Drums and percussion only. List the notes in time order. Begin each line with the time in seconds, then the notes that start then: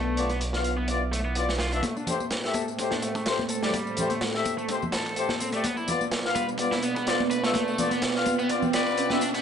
0.17 closed hi-hat
0.30 closed hi-hat
0.41 closed hi-hat
0.53 snare
0.64 closed hi-hat
0.88 closed hi-hat
1.13 closed hi-hat
1.35 closed hi-hat
1.49 snare
1.59 snare, closed hi-hat
1.72 closed hi-hat
1.83 kick, closed hi-hat, tambourine, high conga
1.97 tambourine
2.07 closed hi-hat, tambourine, low conga
2.20 tambourine, high conga
2.31 snare, closed hi-hat, tambourine
2.44 snare, tambourine
2.53 kick, closed hi-hat, tambourine, high conga
2.68 tambourine
2.79 kick, closed hi-hat, tambourine
2.91 snare, tambourine, high conga
3.02 closed hi-hat, tambourine
3.15 kick, tambourine
3.26 snare, closed hi-hat, tambourine
3.39 tambourine, high conga
3.49 closed hi-hat, tambourine
3.63 snare, tambourine
3.74 kick, closed hi-hat, tambourine, high conga
3.87 tambourine
3.97 closed hi-hat, tambourine, low conga
4.10 closed hi-hat, tambourine, high conga
4.21 snare, closed hi-hat, tambourine
4.34 snare, tambourine
4.45 kick, closed hi-hat, tambourine, high conga
4.58 tambourine
4.69 kick, closed hi-hat, tambourine
4.82 tambourine, high conga, low conga
4.92 snare, closed hi-hat, tambourine
5.06 kick, tambourine
5.16 closed hi-hat, tambourine
5.29 snare, high conga
5.40 closed hi-hat, tambourine
5.52 closed hi-hat, tambourine
5.64 kick, closed hi-hat, tambourine, high conga
5.77 tambourine
5.88 closed hi-hat, tambourine, low conga
6.01 tambourine, high conga
6.12 snare, closed hi-hat, tambourine
6.25 snare, tambourine
6.35 kick, closed hi-hat, tambourine, high conga
6.49 tambourine
6.58 kick, closed hi-hat, tambourine
6.71 snare, tambourine, high conga
6.82 closed hi-hat, tambourine
6.96 kick, tambourine
7.07 snare, closed hi-hat, tambourine
7.20 tambourine, high conga
7.31 closed hi-hat, tambourine
7.44 snare, tambourine
7.54 kick, closed hi-hat, tambourine, high conga
7.68 tambourine
7.78 closed hi-hat, tambourine, low conga
7.91 closed hi-hat, tambourine, high conga
8.02 snare, closed hi-hat, tambourine
8.15 snare, tambourine
8.26 kick, closed hi-hat, tambourine, high conga
8.39 tambourine
8.49 kick, closed hi-hat, tambourine
8.62 tambourine, high conga, low conga
8.73 snare, closed hi-hat, tambourine
8.87 kick, tambourine
8.97 closed hi-hat, tambourine
9.10 snare, tambourine, high conga
9.21 closed hi-hat, tambourine
9.34 closed hi-hat, tambourine